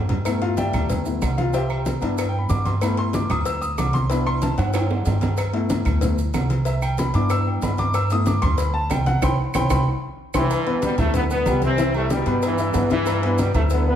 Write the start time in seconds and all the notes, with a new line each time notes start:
Already playing: G2
0.09 cowbell, low conga, low agogo
0.25 A3 B3 E4, cowbell, high conga, low agogo, claves, maracas
0.41 F4 F5, cowbell, high conga
0.57 G4 D5 E5 G5, cowbell, high conga, low timbale, low agogo, maracas
0.73 D2, cowbell, high conga, low conga, low agogo, claves, maracas
0.90 cowbell, high conga, low conga, maracas
1.05 A3 B3 E4, high conga, maracas
1.22 C2, cowbell, high conga, low timbale, low agogo, claves, maracas
1.38 F4 F5, cowbell, high conga, maracas
1.53 G4 C5 E5 G5, cowbell, high conga, low agogo, maracas
1.70 high conga, low agogo, claves
1.86 cowbell, high conga, low timbale, maracas
2.01 G2 B3 D4 E4, cowbell, high conga, low agogo, maracas
2.17 cowbell, high conga, low agogo, claves, maracas
2.29 G5, high conga
2.38 B5
2.49 G2 D6, cowbell, high conga, low timbale, low agogo, maracas
2.65 C6, cowbell, high conga, low agogo, maracas
2.81 A3 B3 E4 B5, cowbell, high conga, low agogo, claves, maracas
2.97 C6, cowbell, high conga
3.13 D6, cowbell, high conga, low timbale, low agogo, maracas
3.30 D2 D#6, cowbell, high conga, low conga, low agogo, claves, maracas
3.45 E6, cowbell, high conga, maracas
3.62 D#6, high conga, maracas
3.78 C2 D6, cowbell, high conga, low timbale, low agogo, claves, maracas
3.93 C6, cowbell, high conga, maracas
4.10 B3 D4 E4 B5, cowbell, high conga, low agogo, maracas
4.26 C6, high conga, low agogo, claves
4.42 A5, cowbell, high conga, low timbale, maracas
4.58 G2 F#5, cowbell, high timbale, low agogo, maracas
4.70 F#5, cowbell, maracas
4.74 G5, high conga, high timbale, low agogo, claves
4.91 high conga, low timbale
5.05 G2, cowbell, high conga, low timbale, low agogo, maracas
5.21 cowbell, high conga, low timbale, low agogo, maracas
5.37 cowbell, high conga, low agogo, claves, maracas
5.53 A3 B3 E4, cowbell, high conga
5.70 cowbell, high conga, low timbale, low agogo, maracas
5.85 D2, cowbell, high conga, low conga, low agogo, claves, maracas
6.01 A3 B3 E4, cowbell, high conga, low conga, maracas
6.18 high conga, maracas
6.34 C2, cowbell, high conga, low timbale, low agogo, claves, maracas
6.50 cowbell, high conga, maracas
6.65 E5, cowbell, high conga, low agogo, maracas
6.82 G5, high conga, low agogo, claves, maracas
6.98 B5, cowbell, high conga, low timbale, maracas
7.14 G2 B3 D4 E4 D6, cowbell, high conga, low agogo, maracas
7.30 E6, cowbell, high conga, low agogo, claves, maracas
7.47 G5, high conga
7.62 G2 B5, cowbell, high conga, low timbale, low agogo, maracas
7.78 D6, cowbell, high conga, low agogo, maracas
7.94 E6, cowbell, high conga, low agogo, claves, maracas
8.10 A3 B3 E4 D#6, cowbell, high conga, maracas
8.26 D6, cowbell, high conga, low timbale, low agogo, maracas
8.42 D2 C6, cowbell, high conga, low conga, low agogo, claves, maracas
8.58 B5, cowbell, high conga, maracas
8.74 A5, high conga
8.90 C2 G5, cowbell, high conga, low timbale, low agogo, claves, maracas
9.06 F#5, cowbell, high conga, maracas
9.22 C2 G5 B5 C6, cowbell, high conga, high timbale, claves, maracas
9.54 C2 G5 B5 C6, cowbell, high conga, high timbale, claves, maracas
9.70 C2 G5 B5 C6, cowbell, high conga, high timbale, claves, maracas
10.34 C2 G2 E3 G5 B5 C6, cowbell, high conga, high timbale, claves, maracas
10.50 cowbell, high conga, low agogo, maracas
10.66 B3 B4 B5, cowbell, high conga
10.82 B2 G3, cowbell, high conga, low timbale, low agogo, maracas
10.98 D2 C3 A3 E4 E5 E6, cowbell, high conga, low conga, low agogo, maracas
11.14 D3 B3, cowbell, high conga, low conga, maracas
11.29 D3 B3 B4 B5, high conga, maracas
11.46 C2 G3 G4 G5, cowbell, high conga, low timbale, low agogo, maracas
11.61 E3 C4, cowbell, high conga, maracas
11.78 E3 E4 E5, cowbell, high conga, low agogo, maracas
11.94 C3 G3 A3 G4 G5, high conga, low agogo
12.10 B2 G3, cowbell, high conga, low timbale, maracas
12.26 G2 B3 B4 B5, cowbell, high conga, low agogo, maracas
12.42 G2 E3, cowbell, high conga, low agogo, maracas
12.58 E4 E5 E6, high conga, maracas
12.74 G2 B3 B4 B5, cowbell, high conga, low timbale, low agogo, maracas
12.90 G2 E3 E4 E5, cowbell, high conga, low agogo, maracas
13.06 cowbell, high conga, low agogo, maracas
13.23 B3 B4 B5, cowbell, high conga
13.38 B2 G3, cowbell, high conga, low timbale, low agogo, maracas
13.54 D2 C3 A3 E4 E5 E6, cowbell, high conga, low conga, low agogo, maracas
13.70 D3 B3, cowbell, high conga, maracas
13.87 D3 B3 B4 B5, high conga